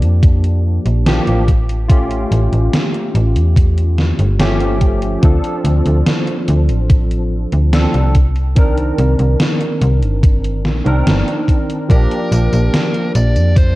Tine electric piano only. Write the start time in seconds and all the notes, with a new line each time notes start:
Already playing: F3 A#3 D4 G4
1.06 F3 A#3 D4 G4
1.88 A3 C#4 F4 G4
4.39 F3 A3 C#4 G4
5.22 F3 C4 D4 A4
7.72 F3 C4 D4 A4
8.55 D#3 C4 D4 A#4
10.85 D#3 C4 D4 A#4
11.88 F3 A#3 D4 G4